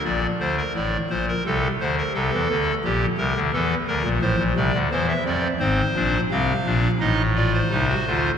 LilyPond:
<<
  \new Staff \with { instrumentName = "Pipe organ" } { \time 4/4 \key bes \major \tempo 4 = 86 << { d''8 c''16 bes'16 d''8 c''16 bes'16 a'8 c''16 bes'16 a'4 | g'8 bes'8 a'8 bes'8 c''8 d''8 c''16 e''16 d''8 | \key f \dorian c''4 f''4 ees''8 d''16 c''4~ c''16 | } \\ { r1 | r1 | c'8 d'8 c'8 d'8 ees'8 f'8 ees'16 fis'16 f'8 | } >> }
  \new Staff \with { instrumentName = "Pipe organ" } { \clef bass \time 4/4 \key bes \major <bes,, bes,>8 <d, d>8 <a,, a,>8 <bes,, bes,>8 <c, c>8 <d, d>8 <c, c>16 <e, e>16 <d, d>8 | <bes,, bes,>8 <c, c>16 <d, d>16 <e, e>8 <d, d>16 <bes,, bes,>16 <a,, a,>16 <bes,, bes,>16 <c, c>16 <d, d>16 <e, e>8 <f, f>8 | \key f \dorian <aes,, aes,>8 <bes,, bes,>8 <c, c>8 <bes,, bes,>8 <a,, a,>4 <c, c>8 <d, d>8 | }
>>